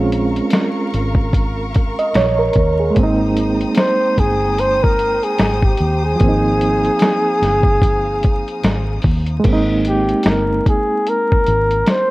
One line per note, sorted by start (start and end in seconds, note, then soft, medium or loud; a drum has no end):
0.00 0.39 A#1 medium
0.00 2.89 G#3 medium
0.00 2.92 C4 medium
0.00 2.94 C#4 medium
0.00 2.97 F4 medium
0.00 2.80 G#4 medium
0.00 2.94 A#4 medium
0.00 2.94 F5 medium
0.00 9.42 A#5 medium
0.00 2.94 C#6 medium
0.12 closed hi-hat medium
0.36 closed hi-hat soft
0.50 snare loud
0.50 closed hi-hat loud
0.94 1.94 G#1 medium
0.94 closed hi-hat medium
1.15 kick loud
1.33 kick loud
1.33 closed hi-hat medium
1.74 kick medium
1.74 closed hi-hat medium
1.99 2.15 D#5 medium
1.99 closed hi-hat soft
2.14 2.49 A#1 medium
2.14 2.38 C#5 medium
2.14 snare loud
2.14 closed hi-hat medium
2.39 2.77 A#4 medium
2.53 2.90 D#2 medium
2.53 kick medium
2.53 closed hi-hat medium
2.80 3.18 G#4 medium
2.90 6.14 G#3 medium
2.95 3.64 G#1 medium
2.95 6.16 A#3 medium
2.95 9.41 C5 medium
2.95 6.18 G5 medium
2.95 9.41 D#6 medium
2.95 kick loud
2.95 closed hi-hat medium
2.99 6.18 C4 medium
3.03 6.20 D#4 medium
3.37 closed hi-hat medium
3.61 closed hi-hat soft
3.75 4.21 C5 loud
3.75 snare loud
3.75 closed hi-hat medium
4.18 5.18 G1 medium
4.18 4.61 G#4 loud
4.18 kick medium
4.18 closed hi-hat medium
4.58 4.84 C5 loud
4.58 closed hi-hat medium
4.83 5.25 A#4 medium
4.83 kick medium
4.99 closed hi-hat medium
5.23 5.66 G#4 medium
5.23 closed hi-hat soft
5.39 5.73 G#1 medium
5.39 snare loud
5.39 closed hi-hat medium
5.63 6.04 G4 medium
5.63 kick medium
5.77 6.14 D#2 medium
5.77 closed hi-hat medium
6.05 9.02 G#4 loud
6.16 9.39 F3 medium
6.20 6.88 G#1 loud
6.20 9.41 A#3 medium
6.20 9.42 F5 medium
6.20 kick loud
6.20 closed hi-hat medium
6.24 9.43 C4 medium
6.28 9.45 D#4 medium
6.61 closed hi-hat medium
6.85 closed hi-hat soft
6.99 snare loud
6.99 closed hi-hat medium
7.42 8.42 G1 medium
7.42 snare soft
7.42 closed hi-hat medium
7.63 kick medium
7.82 kick medium
7.82 closed hi-hat medium
8.23 kick medium
8.23 closed hi-hat medium
8.48 closed hi-hat soft
8.63 8.98 G#1 medium
8.63 snare loud
8.63 closed hi-hat medium
9.02 9.38 D#2 medium
9.02 kick medium
9.02 open hi-hat soft
9.27 closed hi-hat soft
9.40 12.11 G#3 medium
9.44 10.12 G#1 loud
9.44 12.11 A#3 medium
9.44 kick loud
9.44 closed hi-hat medium
9.44 crash medium
9.48 12.11 C4 medium
9.53 12.11 D#4 medium
9.85 10.30 G4 medium
9.85 closed hi-hat medium
10.09 closed hi-hat soft
10.23 10.59 G1 medium
10.23 snare loud
10.23 closed hi-hat medium
10.29 10.68 A#4 medium
10.66 11.10 G#4 medium
10.66 kick loud
10.66 closed hi-hat medium
11.07 11.89 A#4 loud
11.07 closed hi-hat medium
11.32 kick medium
11.47 11.81 G#1 medium
11.47 closed hi-hat medium
11.71 closed hi-hat soft
11.86 12.11 C5 loud
11.86 snare loud
11.86 closed hi-hat medium